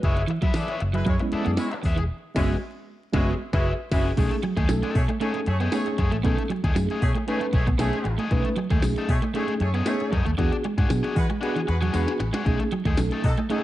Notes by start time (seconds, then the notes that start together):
Already playing: F#4 B4
0.03 F#1 G#3 E4 G#4 B4 C#5 E5, kick, closed hi-hat
0.16 muted clean electric guitar stroke, closed hi-hat
0.27 E3, muted overdriven electric guitar stroke, closed hi-hat
0.42 F#3 G#3 E4 G#4 B4 E5, muted fingered electric bass stroke, kick, snare, closed hi-hat
0.54 E3 G#4 A4 B4 D5 E5, snare, closed hi-hat, tambourine
0.68 G#3 E4 C#5, muted clean electric guitar stroke, closed hi-hat
0.80 F#1, muted overdriven electric guitar stroke, closed hi-hat
0.93 F#3 G#3 E4 B4, muted overdriven electric guitar stroke, closed hi-hat
1.05 F#2 F#3 G#3 E4 C#5, kick, closed hi-hat
1.19 G#3 B3 C#4 E4, muted clean electric guitar stroke, muted overdriven electric guitar stroke, closed hi-hat
1.32 G#4 A4 B4 D5 E5, muted fingered electric bass stroke, closed hi-hat
1.45 F#2 B3, muted overdriven electric guitar stroke, closed hi-hat
1.57 G#3 B3 E4 C#5, snare, closed hi-hat, tambourine
1.72 muted overdriven electric guitar stroke, closed hi-hat
1.83 E2 G#4 B4 E5, muted clean electric guitar stroke, kick, open hi-hat
1.96 E1 E3, muted overdriven electric guitar stroke, closed hi-hat
2.35 F#1 G#3 B3 C#4 E4 F#4 G#4 B4 C#5 E5, kick, snare, crash
3.12 F#1 G#3 B3 C#4 E4 F#4 G#4 B4 C#5 E5, kick, snare
3.52 F#1 G#3 E4 F#4 G#4 B4 C#5 E5, kick, snare
3.91 F#1 G#3 C#4 E4 F#4 G#4 B4 C#5 E5, kick, snare, crash
4.17 B1 A3 C#4 D#4 G#4, kick, closed hi-hat, crash
4.31 muted clean electric guitar stroke, muted overdriven electric guitar stroke, closed hi-hat
4.43 F#3, muted overdriven electric guitar stroke, closed hi-hat
4.56 D#2 A3 D#4 G#4, kick, snare, closed hi-hat
4.69 B1 F#3 A3 C#4 D#4 A4, muted overdriven electric guitar stroke, snare, closed hi-hat, tambourine
4.82 A3 D#4 A4, muted clean electric guitar stroke, closed hi-hat
4.95 B2 A3 G#4 C#5, muted overdriven electric guitar stroke, kick, open hi-hat
5.08 A3, muted overdriven electric guitar stroke, closed hi-hat
5.20 A3 C#4 D#4 G#4 A4 C#5, closed hi-hat
5.34 muted clean electric guitar stroke, closed hi-hat
5.46 F#2 A3 G#4 C#5, muted overdriven electric guitar stroke, closed hi-hat
5.60 A3 B3 D#4 G#4, closed hi-hat
5.72 A3 B3 C#4 D#4 G#4 C#5, muted overdriven electric guitar stroke, snare, closed hi-hat, tambourine
5.86 muted overdriven electric guitar stroke, closed hi-hat
5.98 F#2 A3 D#4 G#4, muted clean electric guitar stroke, kick, closed hi-hat
6.11 A1 A3, muted overdriven electric guitar stroke, closed hi-hat
6.23 B1 A3 B3 C#4 D#4 G#4 A4, kick, closed hi-hat
6.37 muted clean electric guitar stroke, muted overdriven electric guitar stroke, closed hi-hat
6.49 F#3, muted overdriven electric guitar stroke, closed hi-hat
6.64 D#2 A3 D#4 G#4, kick, snare, closed hi-hat
6.75 F#2 F#3 A3 C#4 D#4 G#4, muted overdriven electric guitar stroke, snare, closed hi-hat, tambourine
6.89 A3 D#4 G#4, muted clean electric guitar stroke, closed hi-hat
7.02 B2 A3 G#4 C#5, muted overdriven electric guitar stroke, kick, open hi-hat
7.15 A3, muted overdriven electric guitar stroke, closed hi-hat
7.27 A3 C#4 D#4 G#4 B4 C#5, closed hi-hat
7.40 A3, muted overdriven electric guitar stroke, closed hi-hat
7.53 B1 A3 D#4 G#4 C#5, muted clean electric guitar stroke, kick, closed hi-hat
7.67 B3, muted overdriven electric guitar stroke, kick, closed hi-hat
7.78 B1 A3 B3 C#4 D#4 G#4 C#5, snare, closed hi-hat, tambourine
7.93 closed hi-hat
8.04 A1, muted clean electric guitar stroke, muted overdriven electric guitar stroke, closed hi-hat
8.18 A3 D#4 G#4, closed hi-hat
8.31 B1 A3 C#4 D#4 G#4 B4, kick, closed hi-hat
8.44 muted clean electric guitar stroke, muted overdriven electric guitar stroke, closed hi-hat
8.56 F#3, muted overdriven electric guitar stroke, closed hi-hat
8.70 D#2 A3 D#4 G#4, kick, snare, closed hi-hat
8.82 B1 F#3 A3 C#4 D#4 G#4, muted overdriven electric guitar stroke, snare, closed hi-hat, tambourine
8.96 A3 D#4 A4, muted clean electric guitar stroke, closed hi-hat
9.09 B2 A3 G#4 C#5, muted overdriven electric guitar stroke, kick, open hi-hat
9.22 A3, muted overdriven electric guitar stroke, closed hi-hat
9.34 A3 C#4 D#4 G#4 C#5, closed hi-hat
9.48 muted clean electric guitar stroke, closed hi-hat
9.60 F#2 A3 G#4 C#5, muted overdriven electric guitar stroke, closed hi-hat
9.74 A3 B3 D#4 G#4, closed hi-hat
9.85 A3 B3 C#4 D#4 G#4 C#5, muted overdriven electric guitar stroke, snare, closed hi-hat, tambourine
10.00 muted overdriven electric guitar stroke, closed hi-hat
10.12 F#2 A3 D#4 G#4, muted clean electric guitar stroke, kick, closed hi-hat
10.26 D#2 A3, muted overdriven electric guitar stroke, closed hi-hat
10.38 E2 E3 B3 D4 F#4 G#4, kick, closed hi-hat
10.52 muted overdriven electric guitar stroke, muted clean electric guitar stroke, closed hi-hat
10.64 G#3, muted overdriven electric guitar stroke, closed hi-hat
10.78 G#2 D4 F#4 G#4, kick, snare, closed hi-hat
10.89 B2 F#3 B3 D4 F#4 G#4, muted overdriven electric guitar stroke, snare, closed hi-hat, tambourine
11.03 D4 F#4 G#4, muted clean electric guitar stroke, closed hi-hat
11.16 E3 G#3 F#4 B4, muted overdriven electric guitar stroke, kick, open hi-hat
11.30 G#3, muted overdriven electric guitar stroke, closed hi-hat
11.41 G#3 B3 D4 F#4 G#4 B4, closed hi-hat
11.56 E3, closed hi-hat
11.67 E2 G#3 F#4 B4, muted overdriven electric guitar stroke, muted clean electric guitar stroke, closed hi-hat
11.81 F#3 D4 F#4 G#4, closed hi-hat
11.93 E2 G#3 B3 D4 F#4 G#4 B4, closed hi-hat, tambourine
12.08 snare, closed hi-hat
12.20 A1, muted overdriven electric guitar stroke, muted clean electric guitar stroke, snare, closed hi-hat
12.33 G#3 D4 F#4 G#4, snare, closed hi-hat
12.45 B1 A3 C#4 D#4 G#4, kick, closed hi-hat
12.60 muted clean electric guitar stroke, muted overdriven electric guitar stroke, closed hi-hat
12.72 F#3, muted overdriven electric guitar stroke, closed hi-hat
12.85 D#2 A3 D#4 G#4, kick, snare, closed hi-hat
12.97 B1 F#3 A3 C#4 D#4 A4, muted overdriven electric guitar stroke, snare, closed hi-hat, tambourine
13.11 A3 D#4 A4, muted clean electric guitar stroke, closed hi-hat
13.24 B2 F#3 D#4 A4, muted overdriven electric guitar stroke, kick, open hi-hat
13.37 A3, muted overdriven electric guitar stroke, closed hi-hat
13.49 F#3 A3 C#4 D#4 G#4 A4, closed hi-hat